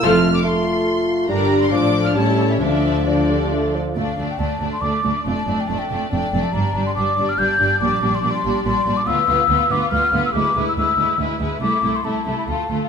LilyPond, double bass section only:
\new Staff \with { instrumentName = "Double bass section" } { \clef bass \time 3/4 \key d \minor \tempo 4 = 141 f,,4 r2 | g,,4 a,,4 a,,4 | d,2~ d,8 r8 | d,8 d,8 d,8 d,8 d,8 d,8 |
f,,8 f,,8 f,,8 f,,8 f,,8 f,,8 | g,,8 g,,8 g,,8 g,,8 g,,8 g,,8 | bes,,8 bes,,8 bes,,8 bes,,8 bes,,8 bes,,8 | \key a \minor d,8 d,8 d,8 d,8 d,8 d,8 |
d,8 d,8 d,8 d,8 d,8 d,8 | c,8 c,8 c,8 c,8 d,8 d,8 | }